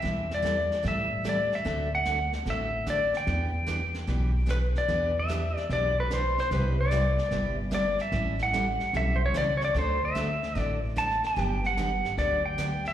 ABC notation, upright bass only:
X:1
M:4/4
L:1/8
Q:"Swing" 1/4=148
K:Em
V:1 name="Upright bass" clef=bass
E,,4 A,,4 | D,,4 A,,,4 | E,,4 B,,,4 | E,,4 B,,,4 |
C,,4 G,,,4 | A,,,4 B,,,2 ^C,,2 | D,,4 A,,,4 | G,,,4 D,,4 |]